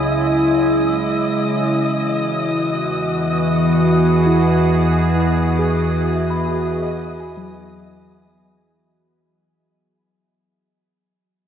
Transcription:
0.00 1.66 C#2 medium
0.00 1.71 C#3 medium
0.00 1.71 G#3 medium
0.00 4.03 E4 medium
0.00 2.71 D#5 medium
0.00 8.87 D#5 medium
0.00 1.72 E5 medium
0.00 1.71 F#5 medium
0.00 8.87 D#6 medium
1.70 8.79 E2 medium
1.70 8.83 E3 medium
2.04 8.83 F#4 medium
2.66 8.84 B3 medium
3.00 8.84 G#4 medium
4.26 5.77 E4 medium
5.59 6.66 G#4 medium
6.15 7.00 E5 soft
6.30 7.38 B5 medium
6.48 9.35 F#4 medium
6.82 9.69 D#5 medium
7.20 8.74 G#5 medium
7.37 10.24 F#3 medium

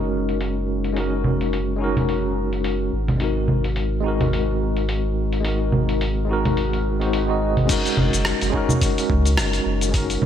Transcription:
0.00 2.90 F#1 medium
0.00 0.93 G#3 medium
0.00 0.94 C#4 medium
0.00 0.96 D#4 medium
0.00 0.98 F#4 medium
0.00 1.00 A#4 medium
0.29 open hi-hat soft
0.41 open hi-hat medium
0.84 open hi-hat soft
0.93 1.75 G#3 medium
0.93 1.77 C#4 medium
0.93 1.78 D#4 medium
0.93 open hi-hat medium
0.98 1.79 F#4 medium
0.98 1.80 A#4 medium
1.24 low conga medium
1.41 open hi-hat soft
1.53 open hi-hat medium
1.76 2.89 G#3 medium
1.76 2.90 C#4 medium
1.76 2.91 D#4 medium
1.82 2.92 F#4 medium
1.82 2.93 A#4 medium
1.97 open hi-hat soft
1.97 low conga medium
2.09 open hi-hat medium
2.53 open hi-hat soft
2.64 open hi-hat medium
2.93 7.67 G#1 medium
3.08 open hi-hat soft
3.08 low conga medium
3.16 3.99 G#3 medium
3.16 4.01 C4 medium
3.16 4.02 D#4 medium
3.16 open hi-hat medium
3.22 4.03 F#4 medium
3.22 4.04 A#4 medium
3.48 low conga medium
3.64 open hi-hat soft
3.76 open hi-hat medium
4.00 5.39 G#3 medium
4.00 5.41 C4 medium
4.00 5.42 D#4 medium
4.06 5.43 F#4 medium
4.06 5.44 A#4 medium
4.21 open hi-hat soft
4.21 low conga medium
4.33 open hi-hat medium
4.77 open hi-hat soft
4.89 open hi-hat medium
5.33 open hi-hat soft
5.41 6.24 G#3 medium
5.41 6.25 C4 medium
5.41 open hi-hat medium
5.45 6.26 D#4 medium
5.45 6.27 F#4 medium
5.45 6.28 A#4 medium
5.72 low conga medium
5.89 open hi-hat soft
6.01 open hi-hat medium
6.25 6.96 G#3 medium
6.25 6.97 C4 medium
6.29 6.98 D#4 medium
6.29 6.99 F#4 medium
6.29 7.00 A#4 loud
6.45 open hi-hat soft
6.45 low conga medium
6.57 open hi-hat medium
6.73 open hi-hat soft
6.99 7.24 G#3 medium
6.99 7.25 C4 medium
6.99 7.25 D#4 medium
6.99 7.26 F#4 medium
6.99 open hi-hat soft
7.03 7.26 C5 medium
7.13 open hi-hat medium
7.27 7.64 G#3 medium
7.27 7.66 C4 medium
7.27 7.66 D#4 medium
7.27 7.67 F#4 medium
7.31 7.67 D#5 medium
7.57 open hi-hat soft
7.57 low conga medium
7.65 8.48 G#3 medium
7.65 8.49 C#4 medium
7.65 8.51 D#4 medium
7.65 open hi-hat medium
7.65 crash loud
7.69 8.51 F#4 medium
7.69 8.52 A#4 medium
7.69 kick loud
7.69 cabasa medium
7.86 open hi-hat soft
7.86 cabasa soft
7.97 8.09 F#1 medium
7.97 low conga medium
8.13 8.34 F#1 medium
8.13 open hi-hat soft
8.13 cabasa medium
8.25 cross-stick loud
8.25 open hi-hat medium
8.25 cabasa medium
8.41 8.51 F#1 medium
8.41 open hi-hat soft
8.41 cabasa soft
8.50 9.88 G#3 loud
8.50 9.90 C#4 medium
8.50 9.91 D#4 medium
8.54 9.92 F#4 medium
8.54 9.93 A#4 loud
8.54 kick medium
8.69 low conga medium
8.69 cabasa medium
8.81 kick loud
8.81 open hi-hat medium
8.81 cabasa medium
8.98 open hi-hat soft
8.98 cabasa soft
9.09 9.40 C#2 medium
9.09 kick loud
9.25 open hi-hat soft
9.25 cabasa medium
9.37 9.60 F#1 medium
9.37 cross-stick loud
9.37 open hi-hat medium
9.37 cabasa medium
9.53 open hi-hat soft
9.53 cabasa soft
9.66 10.17 F#1 medium
9.81 open hi-hat soft
9.81 cabasa medium
9.89 10.26 G#3 medium
9.89 10.26 C#4 medium
9.94 10.26 D#4 medium
9.94 10.26 F#4 medium
9.94 10.26 A#4 medium
9.94 kick loud
9.94 open hi-hat medium
9.94 cabasa medium
10.10 open hi-hat soft
10.10 cabasa soft
10.22 10.26 F#1 loud
10.22 low conga medium

